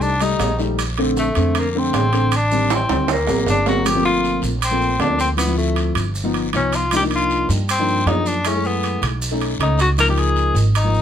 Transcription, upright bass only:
0.00 0.36 C2 loud
0.39 1.29 A#1 medium
1.36 1.90 F2 medium
1.93 2.83 A1 medium
2.89 3.25 D2 medium
3.28 3.46 A1 medium
3.46 4.37 G1 medium
4.42 4.96 A#1 medium
4.99 5.90 D2 medium
5.95 6.49 G1 medium
6.53 7.43 C2 medium
7.49 8.03 G2 loud
8.06 8.96 F#2 medium
9.02 9.56 B1 medium
9.59 10.49 C#2 medium
10.54 11.02 G#1 loud

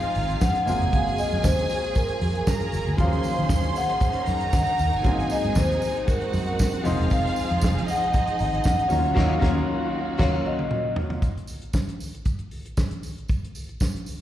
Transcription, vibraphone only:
0.00 0.43 F5 loud
0.41 0.94 F#5 loud
0.93 1.19 F5 loud
1.19 1.45 D#5 medium
1.43 1.97 C5 medium
1.96 2.69 A#4 medium
3.00 3.79 F5 loud
3.77 4.52 F#5 medium
4.53 5.01 F#5 loud
5.04 5.31 F5 medium
5.31 5.55 D#5 loud
5.57 6.10 C5 medium
6.08 6.81 A#4 medium
7.12 7.59 F5 loud
7.90 8.66 F#5 loud
8.67 9.14 F#5 loud
9.19 10.24 F5 loud
10.22 10.47 C#5 medium
10.46 10.94 D#5 medium

